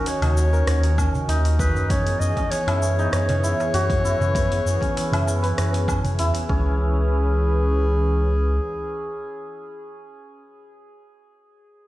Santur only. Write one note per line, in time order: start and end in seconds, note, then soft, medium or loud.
0.00 0.97 C#4 medium
0.00 0.22 D#4 loud
0.00 2.09 F#4 loud
0.00 1.31 A#5 medium
0.22 1.28 D#4 medium
0.53 3.36 A#4 medium
0.98 1.90 C#4 medium
1.29 1.59 D#4 loud
1.59 2.73 D#4 loud
1.90 2.36 C#4 medium
2.37 4.81 C#4 medium
2.67 3.05 E4 medium
2.99 3.49 D#4 loud
3.43 4.04 E4 medium
3.74 6.99 F#4 loud
4.05 5.12 E4 loud
4.35 5.42 B4 medium
4.82 5.88 C#4 medium
5.12 6.19 E4 medium
5.43 8.16 B4 medium
5.88 6.49 C#4 medium
6.19 9.67 E4 loud
6.49 10.35 C#4 medium